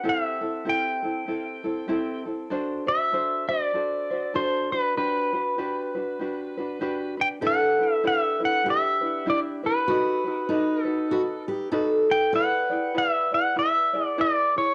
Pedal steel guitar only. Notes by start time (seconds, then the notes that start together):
0.09 E5
0.69 G5
2.88 E5
3.49 D5
4.36 C5
4.72 B4
4.97 B4
7.21 G5
7.47 F#5
7.94 E5
8.07 E5
8.45 F#5
8.70 E5
9.30 D5
9.66 B4
10.83 A4
12.11 G5
12.36 F#5
12.98 E5
13.34 F#5
13.59 E5
14.06 D5
14.21 D5
14.58 C#5